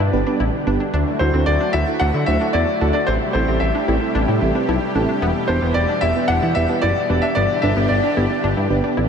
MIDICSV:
0, 0, Header, 1, 6, 480
1, 0, Start_track
1, 0, Key_signature, 1, "major"
1, 0, Tempo, 535714
1, 840, Time_signature, 4, 2, 24, 8
1, 8143, End_track
2, 0, Start_track
2, 0, Title_t, "Grand piano"
2, 0, Program_c, 0, 0
2, 0, Note_on_c, 0, 74, 82
2, 317, Note_off_c, 0, 74, 0
2, 1070, Note_on_c, 0, 72, 86
2, 1309, Note_on_c, 0, 74, 98
2, 1322, Note_off_c, 0, 72, 0
2, 1537, Note_off_c, 0, 74, 0
2, 1549, Note_on_c, 0, 76, 102
2, 1788, Note_on_c, 0, 78, 108
2, 1802, Note_off_c, 0, 76, 0
2, 2016, Note_off_c, 0, 78, 0
2, 2028, Note_on_c, 0, 76, 100
2, 2257, Note_off_c, 0, 76, 0
2, 2268, Note_on_c, 0, 74, 97
2, 2608, Note_off_c, 0, 74, 0
2, 2627, Note_on_c, 0, 74, 86
2, 2748, Note_on_c, 0, 72, 95
2, 2757, Note_off_c, 0, 74, 0
2, 2803, Note_off_c, 0, 72, 0
2, 2985, Note_on_c, 0, 72, 87
2, 3225, Note_on_c, 0, 76, 88
2, 3240, Note_off_c, 0, 72, 0
2, 4157, Note_off_c, 0, 76, 0
2, 4906, Note_on_c, 0, 72, 86
2, 5146, Note_on_c, 0, 74, 100
2, 5160, Note_off_c, 0, 72, 0
2, 5385, Note_on_c, 0, 76, 103
2, 5400, Note_off_c, 0, 74, 0
2, 5625, Note_on_c, 0, 78, 111
2, 5640, Note_off_c, 0, 76, 0
2, 5855, Note_off_c, 0, 78, 0
2, 5867, Note_on_c, 0, 76, 100
2, 6107, Note_on_c, 0, 74, 103
2, 6121, Note_off_c, 0, 76, 0
2, 6466, Note_on_c, 0, 76, 92
2, 6484, Note_off_c, 0, 74, 0
2, 6584, Note_off_c, 0, 76, 0
2, 6586, Note_on_c, 0, 74, 104
2, 6826, Note_on_c, 0, 76, 94
2, 6840, Note_off_c, 0, 74, 0
2, 7066, Note_on_c, 0, 74, 84
2, 7080, Note_off_c, 0, 76, 0
2, 7997, Note_off_c, 0, 74, 0
2, 8143, End_track
3, 0, Start_track
3, 0, Title_t, "FM electric piano"
3, 0, Program_c, 1, 5
3, 119, Note_on_c, 1, 59, 89
3, 119, Note_on_c, 1, 62, 84
3, 119, Note_on_c, 1, 67, 83
3, 119, Note_on_c, 1, 71, 101
3, 186, Note_off_c, 1, 59, 0
3, 186, Note_off_c, 1, 62, 0
3, 186, Note_off_c, 1, 67, 0
3, 186, Note_off_c, 1, 71, 0
3, 239, Note_on_c, 1, 62, 78
3, 239, Note_on_c, 1, 71, 94
3, 240, Note_on_c, 1, 59, 81
3, 240, Note_on_c, 1, 67, 76
3, 373, Note_off_c, 1, 59, 0
3, 373, Note_off_c, 1, 62, 0
3, 373, Note_off_c, 1, 67, 0
3, 373, Note_off_c, 1, 71, 0
3, 598, Note_on_c, 1, 59, 89
3, 598, Note_on_c, 1, 67, 80
3, 598, Note_on_c, 1, 71, 97
3, 599, Note_on_c, 1, 62, 83
3, 732, Note_off_c, 1, 59, 0
3, 732, Note_off_c, 1, 62, 0
3, 732, Note_off_c, 1, 67, 0
3, 732, Note_off_c, 1, 71, 0
3, 1080, Note_on_c, 1, 62, 76
3, 1080, Note_on_c, 1, 64, 69
3, 1080, Note_on_c, 1, 66, 68
3, 1080, Note_on_c, 1, 69, 86
3, 1146, Note_off_c, 1, 62, 0
3, 1146, Note_off_c, 1, 66, 0
3, 1146, Note_off_c, 1, 69, 0
3, 1147, Note_off_c, 1, 64, 0
3, 1198, Note_on_c, 1, 69, 76
3, 1199, Note_on_c, 1, 62, 70
3, 1199, Note_on_c, 1, 64, 64
3, 1199, Note_on_c, 1, 66, 64
3, 1332, Note_off_c, 1, 62, 0
3, 1332, Note_off_c, 1, 64, 0
3, 1332, Note_off_c, 1, 66, 0
3, 1332, Note_off_c, 1, 69, 0
3, 1559, Note_on_c, 1, 62, 76
3, 1559, Note_on_c, 1, 71, 88
3, 1560, Note_on_c, 1, 64, 70
3, 1560, Note_on_c, 1, 66, 71
3, 1626, Note_off_c, 1, 62, 0
3, 1626, Note_off_c, 1, 64, 0
3, 1626, Note_off_c, 1, 66, 0
3, 1626, Note_off_c, 1, 71, 0
3, 1680, Note_on_c, 1, 62, 68
3, 1680, Note_on_c, 1, 64, 62
3, 1680, Note_on_c, 1, 66, 62
3, 1680, Note_on_c, 1, 69, 77
3, 1813, Note_off_c, 1, 62, 0
3, 1813, Note_off_c, 1, 64, 0
3, 1813, Note_off_c, 1, 66, 0
3, 1813, Note_off_c, 1, 69, 0
3, 2040, Note_on_c, 1, 62, 75
3, 2040, Note_on_c, 1, 64, 70
3, 2040, Note_on_c, 1, 66, 69
3, 2040, Note_on_c, 1, 72, 81
3, 2106, Note_off_c, 1, 62, 0
3, 2106, Note_off_c, 1, 64, 0
3, 2106, Note_off_c, 1, 66, 0
3, 2106, Note_off_c, 1, 72, 0
3, 2159, Note_on_c, 1, 69, 78
3, 2160, Note_on_c, 1, 62, 70
3, 2160, Note_on_c, 1, 64, 66
3, 2160, Note_on_c, 1, 66, 64
3, 2293, Note_off_c, 1, 62, 0
3, 2293, Note_off_c, 1, 64, 0
3, 2293, Note_off_c, 1, 66, 0
3, 2293, Note_off_c, 1, 69, 0
3, 2520, Note_on_c, 1, 62, 78
3, 2520, Note_on_c, 1, 64, 69
3, 2520, Note_on_c, 1, 66, 69
3, 2520, Note_on_c, 1, 69, 82
3, 2653, Note_off_c, 1, 62, 0
3, 2653, Note_off_c, 1, 64, 0
3, 2653, Note_off_c, 1, 66, 0
3, 2653, Note_off_c, 1, 69, 0
3, 3000, Note_on_c, 1, 60, 78
3, 3000, Note_on_c, 1, 64, 68
3, 3000, Note_on_c, 1, 67, 68
3, 3000, Note_on_c, 1, 69, 84
3, 3066, Note_off_c, 1, 60, 0
3, 3066, Note_off_c, 1, 64, 0
3, 3066, Note_off_c, 1, 67, 0
3, 3066, Note_off_c, 1, 69, 0
3, 3118, Note_on_c, 1, 64, 65
3, 3118, Note_on_c, 1, 67, 66
3, 3118, Note_on_c, 1, 69, 80
3, 3119, Note_on_c, 1, 60, 70
3, 3252, Note_off_c, 1, 60, 0
3, 3252, Note_off_c, 1, 64, 0
3, 3252, Note_off_c, 1, 67, 0
3, 3252, Note_off_c, 1, 69, 0
3, 3478, Note_on_c, 1, 60, 78
3, 3478, Note_on_c, 1, 64, 73
3, 3478, Note_on_c, 1, 67, 71
3, 3478, Note_on_c, 1, 69, 84
3, 3545, Note_off_c, 1, 64, 0
3, 3545, Note_off_c, 1, 67, 0
3, 3545, Note_off_c, 1, 69, 0
3, 3546, Note_off_c, 1, 60, 0
3, 3598, Note_on_c, 1, 60, 70
3, 3598, Note_on_c, 1, 64, 65
3, 3598, Note_on_c, 1, 69, 77
3, 3599, Note_on_c, 1, 67, 63
3, 3732, Note_off_c, 1, 60, 0
3, 3732, Note_off_c, 1, 64, 0
3, 3732, Note_off_c, 1, 67, 0
3, 3732, Note_off_c, 1, 69, 0
3, 3959, Note_on_c, 1, 60, 94
3, 3959, Note_on_c, 1, 64, 85
3, 3959, Note_on_c, 1, 67, 83
3, 3959, Note_on_c, 1, 69, 100
3, 3959, Note_on_c, 1, 76, 74
3, 4026, Note_off_c, 1, 60, 0
3, 4026, Note_off_c, 1, 64, 0
3, 4026, Note_off_c, 1, 67, 0
3, 4026, Note_off_c, 1, 69, 0
3, 4079, Note_on_c, 1, 60, 88
3, 4079, Note_on_c, 1, 64, 76
3, 4079, Note_on_c, 1, 67, 76
3, 4079, Note_on_c, 1, 71, 96
3, 4182, Note_off_c, 1, 76, 0
3, 4200, Note_on_c, 1, 81, 78
3, 4212, Note_off_c, 1, 67, 0
3, 4212, Note_off_c, 1, 71, 0
3, 4213, Note_off_c, 1, 60, 0
3, 4213, Note_off_c, 1, 64, 0
3, 4439, Note_on_c, 1, 67, 85
3, 4440, Note_on_c, 1, 60, 89
3, 4440, Note_on_c, 1, 64, 81
3, 4440, Note_on_c, 1, 69, 99
3, 4573, Note_off_c, 1, 60, 0
3, 4573, Note_off_c, 1, 64, 0
3, 4573, Note_off_c, 1, 67, 0
3, 4573, Note_off_c, 1, 69, 0
3, 4646, Note_off_c, 1, 81, 0
3, 4918, Note_on_c, 1, 59, 78
3, 4918, Note_on_c, 1, 64, 71
3, 4918, Note_on_c, 1, 67, 71
3, 4918, Note_on_c, 1, 71, 85
3, 4985, Note_off_c, 1, 59, 0
3, 4985, Note_off_c, 1, 64, 0
3, 4985, Note_off_c, 1, 67, 0
3, 4985, Note_off_c, 1, 71, 0
3, 5039, Note_on_c, 1, 59, 71
3, 5039, Note_on_c, 1, 64, 63
3, 5039, Note_on_c, 1, 67, 64
3, 5039, Note_on_c, 1, 71, 77
3, 5172, Note_off_c, 1, 59, 0
3, 5172, Note_off_c, 1, 64, 0
3, 5172, Note_off_c, 1, 67, 0
3, 5173, Note_off_c, 1, 71, 0
3, 5398, Note_on_c, 1, 59, 79
3, 5398, Note_on_c, 1, 64, 70
3, 5398, Note_on_c, 1, 67, 73
3, 5399, Note_on_c, 1, 74, 88
3, 5465, Note_off_c, 1, 67, 0
3, 5466, Note_off_c, 1, 59, 0
3, 5466, Note_off_c, 1, 64, 0
3, 5466, Note_off_c, 1, 74, 0
3, 5519, Note_on_c, 1, 59, 71
3, 5519, Note_on_c, 1, 64, 65
3, 5519, Note_on_c, 1, 67, 65
3, 5519, Note_on_c, 1, 71, 78
3, 5652, Note_off_c, 1, 59, 0
3, 5652, Note_off_c, 1, 64, 0
3, 5653, Note_off_c, 1, 67, 0
3, 5653, Note_off_c, 1, 71, 0
3, 5878, Note_on_c, 1, 59, 77
3, 5878, Note_on_c, 1, 64, 71
3, 5878, Note_on_c, 1, 67, 71
3, 5878, Note_on_c, 1, 71, 86
3, 5945, Note_off_c, 1, 67, 0
3, 5946, Note_off_c, 1, 59, 0
3, 5946, Note_off_c, 1, 64, 0
3, 5946, Note_off_c, 1, 71, 0
3, 5998, Note_on_c, 1, 59, 73
3, 5998, Note_on_c, 1, 67, 65
3, 5999, Note_on_c, 1, 64, 65
3, 5999, Note_on_c, 1, 71, 80
3, 6132, Note_off_c, 1, 59, 0
3, 6132, Note_off_c, 1, 64, 0
3, 6132, Note_off_c, 1, 67, 0
3, 6132, Note_off_c, 1, 71, 0
3, 6359, Note_on_c, 1, 59, 78
3, 6359, Note_on_c, 1, 64, 67
3, 6359, Note_on_c, 1, 67, 68
3, 6359, Note_on_c, 1, 71, 84
3, 6492, Note_off_c, 1, 59, 0
3, 6492, Note_off_c, 1, 64, 0
3, 6492, Note_off_c, 1, 67, 0
3, 6492, Note_off_c, 1, 71, 0
3, 6839, Note_on_c, 1, 59, 74
3, 6839, Note_on_c, 1, 62, 69
3, 6839, Note_on_c, 1, 67, 71
3, 6839, Note_on_c, 1, 71, 86
3, 6906, Note_off_c, 1, 59, 0
3, 6906, Note_off_c, 1, 62, 0
3, 6906, Note_off_c, 1, 67, 0
3, 6906, Note_off_c, 1, 71, 0
3, 6958, Note_on_c, 1, 62, 62
3, 6958, Note_on_c, 1, 67, 67
3, 6958, Note_on_c, 1, 71, 75
3, 6959, Note_on_c, 1, 59, 71
3, 7092, Note_off_c, 1, 59, 0
3, 7092, Note_off_c, 1, 62, 0
3, 7092, Note_off_c, 1, 67, 0
3, 7092, Note_off_c, 1, 71, 0
3, 7318, Note_on_c, 1, 59, 78
3, 7318, Note_on_c, 1, 62, 73
3, 7318, Note_on_c, 1, 67, 73
3, 7318, Note_on_c, 1, 71, 86
3, 7385, Note_off_c, 1, 59, 0
3, 7385, Note_off_c, 1, 62, 0
3, 7385, Note_off_c, 1, 67, 0
3, 7385, Note_off_c, 1, 71, 0
3, 7438, Note_on_c, 1, 59, 68
3, 7439, Note_on_c, 1, 62, 63
3, 7439, Note_on_c, 1, 67, 65
3, 7439, Note_on_c, 1, 74, 77
3, 7572, Note_off_c, 1, 59, 0
3, 7572, Note_off_c, 1, 62, 0
3, 7572, Note_off_c, 1, 67, 0
3, 7572, Note_off_c, 1, 74, 0
3, 7798, Note_on_c, 1, 59, 92
3, 7798, Note_on_c, 1, 62, 84
3, 7798, Note_on_c, 1, 67, 86
3, 7798, Note_on_c, 1, 71, 96
3, 7865, Note_off_c, 1, 59, 0
3, 7865, Note_off_c, 1, 62, 0
3, 7865, Note_off_c, 1, 67, 0
3, 7865, Note_off_c, 1, 71, 0
3, 7918, Note_on_c, 1, 67, 78
3, 7919, Note_on_c, 1, 59, 83
3, 7919, Note_on_c, 1, 62, 75
3, 7919, Note_on_c, 1, 71, 91
3, 8052, Note_off_c, 1, 62, 0
3, 8052, Note_off_c, 1, 67, 0
3, 8052, Note_off_c, 1, 71, 0
3, 8053, Note_off_c, 1, 59, 0
3, 8143, End_track
4, 0, Start_track
4, 0, Title_t, "Synth arpeggio sound"
4, 0, Program_c, 2, 84
4, 0, Note_on_c, 2, 64, 78
4, 138, Note_off_c, 2, 64, 0
4, 239, Note_on_c, 2, 62, 75
4, 308, Note_off_c, 2, 62, 0
4, 359, Note_on_c, 2, 64, 84
4, 498, Note_off_c, 2, 64, 0
4, 599, Note_on_c, 2, 62, 83
4, 669, Note_off_c, 2, 62, 0
4, 719, Note_on_c, 2, 62, 77
4, 789, Note_off_c, 2, 62, 0
4, 838, Note_on_c, 2, 62, 99
4, 977, Note_off_c, 2, 62, 0
4, 1079, Note_on_c, 2, 64, 77
4, 1149, Note_off_c, 2, 64, 0
4, 1199, Note_on_c, 2, 60, 77
4, 1337, Note_off_c, 2, 60, 0
4, 1440, Note_on_c, 2, 62, 78
4, 1509, Note_off_c, 2, 62, 0
4, 1559, Note_on_c, 2, 64, 81
4, 1698, Note_off_c, 2, 64, 0
4, 1800, Note_on_c, 2, 62, 92
4, 1869, Note_off_c, 2, 62, 0
4, 1919, Note_on_c, 2, 64, 78
4, 2058, Note_off_c, 2, 64, 0
4, 2159, Note_on_c, 2, 62, 77
4, 2228, Note_off_c, 2, 62, 0
4, 2280, Note_on_c, 2, 64, 86
4, 2418, Note_off_c, 2, 64, 0
4, 2520, Note_on_c, 2, 62, 82
4, 2589, Note_off_c, 2, 62, 0
4, 2640, Note_on_c, 2, 62, 77
4, 2709, Note_off_c, 2, 62, 0
4, 2760, Note_on_c, 2, 60, 91
4, 2898, Note_off_c, 2, 60, 0
4, 3000, Note_on_c, 2, 64, 78
4, 3069, Note_off_c, 2, 64, 0
4, 3119, Note_on_c, 2, 60, 76
4, 3258, Note_off_c, 2, 60, 0
4, 3359, Note_on_c, 2, 62, 76
4, 3429, Note_off_c, 2, 62, 0
4, 3479, Note_on_c, 2, 64, 82
4, 3618, Note_off_c, 2, 64, 0
4, 3718, Note_on_c, 2, 62, 95
4, 3788, Note_off_c, 2, 62, 0
4, 3837, Note_on_c, 2, 64, 77
4, 3976, Note_off_c, 2, 64, 0
4, 4078, Note_on_c, 2, 62, 76
4, 4148, Note_off_c, 2, 62, 0
4, 4199, Note_on_c, 2, 64, 88
4, 4337, Note_off_c, 2, 64, 0
4, 4438, Note_on_c, 2, 62, 81
4, 4508, Note_off_c, 2, 62, 0
4, 4559, Note_on_c, 2, 62, 76
4, 4629, Note_off_c, 2, 62, 0
4, 4679, Note_on_c, 2, 59, 97
4, 4818, Note_off_c, 2, 59, 0
4, 4918, Note_on_c, 2, 62, 81
4, 4988, Note_off_c, 2, 62, 0
4, 5038, Note_on_c, 2, 59, 78
4, 5177, Note_off_c, 2, 59, 0
4, 5278, Note_on_c, 2, 62, 79
4, 5348, Note_off_c, 2, 62, 0
4, 5399, Note_on_c, 2, 64, 85
4, 5537, Note_off_c, 2, 64, 0
4, 5639, Note_on_c, 2, 62, 93
4, 5709, Note_off_c, 2, 62, 0
4, 5759, Note_on_c, 2, 64, 77
4, 5898, Note_off_c, 2, 64, 0
4, 5998, Note_on_c, 2, 62, 74
4, 6068, Note_off_c, 2, 62, 0
4, 6119, Note_on_c, 2, 64, 87
4, 6257, Note_off_c, 2, 64, 0
4, 6360, Note_on_c, 2, 62, 83
4, 6429, Note_off_c, 2, 62, 0
4, 6478, Note_on_c, 2, 62, 77
4, 6548, Note_off_c, 2, 62, 0
4, 6599, Note_on_c, 2, 59, 94
4, 6737, Note_off_c, 2, 59, 0
4, 6838, Note_on_c, 2, 62, 78
4, 6908, Note_off_c, 2, 62, 0
4, 6959, Note_on_c, 2, 59, 79
4, 7097, Note_off_c, 2, 59, 0
4, 7200, Note_on_c, 2, 62, 80
4, 7269, Note_off_c, 2, 62, 0
4, 7320, Note_on_c, 2, 64, 83
4, 7458, Note_off_c, 2, 64, 0
4, 7561, Note_on_c, 2, 62, 92
4, 7629, Note_off_c, 2, 62, 0
4, 7680, Note_on_c, 2, 64, 78
4, 7818, Note_off_c, 2, 64, 0
4, 7920, Note_on_c, 2, 62, 79
4, 7989, Note_off_c, 2, 62, 0
4, 8039, Note_on_c, 2, 64, 83
4, 8143, Note_off_c, 2, 64, 0
4, 8143, End_track
5, 0, Start_track
5, 0, Title_t, "Analog synth pad"
5, 0, Program_c, 3, 89
5, 0, Note_on_c, 3, 47, 81
5, 0, Note_on_c, 3, 50, 74
5, 0, Note_on_c, 3, 55, 74
5, 0, Note_on_c, 3, 62, 73
5, 0, Note_on_c, 3, 67, 89
5, 803, Note_off_c, 3, 47, 0
5, 803, Note_off_c, 3, 55, 0
5, 804, Note_off_c, 3, 67, 0
5, 820, Note_off_c, 3, 62, 0
5, 839, Note_on_c, 3, 64, 72
5, 840, Note_on_c, 3, 54, 74
5, 840, Note_on_c, 3, 57, 71
5, 840, Note_on_c, 3, 66, 90
5, 2723, Note_off_c, 3, 50, 0
5, 2740, Note_off_c, 3, 66, 0
5, 2741, Note_off_c, 3, 54, 0
5, 2760, Note_on_c, 3, 67, 90
5, 2761, Note_on_c, 3, 48, 82
5, 2762, Note_on_c, 3, 55, 75
5, 4644, Note_off_c, 3, 57, 0
5, 4661, Note_off_c, 3, 48, 0
5, 4679, Note_on_c, 3, 47, 79
5, 4680, Note_on_c, 3, 52, 74
5, 6563, Note_off_c, 3, 64, 0
5, 6564, Note_off_c, 3, 67, 0
5, 6580, Note_off_c, 3, 52, 0
5, 6600, Note_on_c, 3, 50, 74
5, 6600, Note_on_c, 3, 62, 74
5, 6600, Note_on_c, 3, 67, 87
5, 8143, Note_off_c, 3, 47, 0
5, 8143, Note_off_c, 3, 50, 0
5, 8143, Note_off_c, 3, 55, 0
5, 8143, Note_off_c, 3, 62, 0
5, 8143, Note_off_c, 3, 67, 0
5, 8143, End_track
6, 0, Start_track
6, 0, Title_t, "Analog synth bass"
6, 0, Program_c, 4, 38
6, 119, Note_on_c, 4, 31, 99
6, 209, Note_off_c, 4, 31, 0
6, 359, Note_on_c, 4, 33, 102
6, 449, Note_off_c, 4, 33, 0
6, 600, Note_on_c, 4, 31, 99
6, 689, Note_off_c, 4, 31, 0
6, 839, Note_on_c, 4, 38, 103
6, 929, Note_off_c, 4, 38, 0
6, 1079, Note_on_c, 4, 38, 95
6, 1169, Note_off_c, 4, 38, 0
6, 1198, Note_on_c, 4, 38, 103
6, 1288, Note_off_c, 4, 38, 0
6, 1319, Note_on_c, 4, 38, 100
6, 1409, Note_off_c, 4, 38, 0
6, 1559, Note_on_c, 4, 38, 104
6, 1649, Note_off_c, 4, 38, 0
6, 1799, Note_on_c, 4, 38, 115
6, 1889, Note_off_c, 4, 38, 0
6, 1919, Note_on_c, 4, 50, 97
6, 2009, Note_off_c, 4, 50, 0
6, 2040, Note_on_c, 4, 38, 96
6, 2129, Note_off_c, 4, 38, 0
6, 2279, Note_on_c, 4, 40, 98
6, 2369, Note_off_c, 4, 40, 0
6, 2521, Note_on_c, 4, 38, 94
6, 2610, Note_off_c, 4, 38, 0
6, 2761, Note_on_c, 4, 33, 113
6, 2850, Note_off_c, 4, 33, 0
6, 3000, Note_on_c, 4, 33, 99
6, 3089, Note_off_c, 4, 33, 0
6, 3119, Note_on_c, 4, 33, 101
6, 3209, Note_off_c, 4, 33, 0
6, 3239, Note_on_c, 4, 33, 96
6, 3329, Note_off_c, 4, 33, 0
6, 3480, Note_on_c, 4, 33, 100
6, 3569, Note_off_c, 4, 33, 0
6, 3719, Note_on_c, 4, 33, 111
6, 3809, Note_off_c, 4, 33, 0
6, 3839, Note_on_c, 4, 45, 93
6, 3929, Note_off_c, 4, 45, 0
6, 3959, Note_on_c, 4, 33, 109
6, 4049, Note_off_c, 4, 33, 0
6, 4198, Note_on_c, 4, 35, 96
6, 4288, Note_off_c, 4, 35, 0
6, 4438, Note_on_c, 4, 33, 102
6, 4528, Note_off_c, 4, 33, 0
6, 4678, Note_on_c, 4, 28, 111
6, 4768, Note_off_c, 4, 28, 0
6, 4918, Note_on_c, 4, 28, 103
6, 5008, Note_off_c, 4, 28, 0
6, 5038, Note_on_c, 4, 28, 100
6, 5128, Note_off_c, 4, 28, 0
6, 5158, Note_on_c, 4, 28, 101
6, 5248, Note_off_c, 4, 28, 0
6, 5398, Note_on_c, 4, 28, 103
6, 5488, Note_off_c, 4, 28, 0
6, 5639, Note_on_c, 4, 28, 108
6, 5729, Note_off_c, 4, 28, 0
6, 5760, Note_on_c, 4, 40, 96
6, 5850, Note_off_c, 4, 40, 0
6, 5880, Note_on_c, 4, 28, 99
6, 5970, Note_off_c, 4, 28, 0
6, 6121, Note_on_c, 4, 30, 101
6, 6210, Note_off_c, 4, 30, 0
6, 6362, Note_on_c, 4, 28, 100
6, 6450, Note_off_c, 4, 28, 0
6, 6601, Note_on_c, 4, 31, 110
6, 6690, Note_off_c, 4, 31, 0
6, 6839, Note_on_c, 4, 31, 109
6, 6929, Note_off_c, 4, 31, 0
6, 6961, Note_on_c, 4, 31, 100
6, 7050, Note_off_c, 4, 31, 0
6, 7081, Note_on_c, 4, 31, 102
6, 7170, Note_off_c, 4, 31, 0
6, 7320, Note_on_c, 4, 31, 97
6, 7409, Note_off_c, 4, 31, 0
6, 7561, Note_on_c, 4, 31, 114
6, 7650, Note_off_c, 4, 31, 0
6, 7680, Note_on_c, 4, 43, 100
6, 7769, Note_off_c, 4, 43, 0
6, 7799, Note_on_c, 4, 31, 101
6, 7889, Note_off_c, 4, 31, 0
6, 8040, Note_on_c, 4, 33, 99
6, 8129, Note_off_c, 4, 33, 0
6, 8143, End_track
0, 0, End_of_file